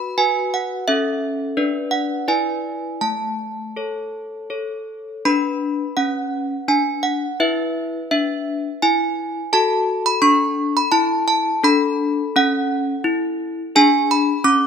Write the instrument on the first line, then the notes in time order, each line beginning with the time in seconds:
handbells
Already playing: F#4 B4 B5
0.18 F#4 B4 G#5
0.54 F#5
0.88 C#4 A4 E5
1.57 D4 B4 D5
1.91 F#5
2.28 E4 B4 D5 G#5
3.01 A3 A5
3.76 A4 C#5
4.50 A4 C#5
5.25 D4 B4 B5
5.97 C#4 F#5
6.68 D4 G#5
7.03 F#5
7.40 E4 B4 E5
8.11 D4 E5
8.82 E4 G#5
9.53 F#4 A4 A5
10.06 B5
10.22 D4 C#6
10.77 B5
10.92 E4 A5
11.28 A5
11.63 D4 A4 B5
12.36 C#4 F#5
13.04 E4
13.76 D4 G#4 G#5
14.11 B5
14.44 C#4 D6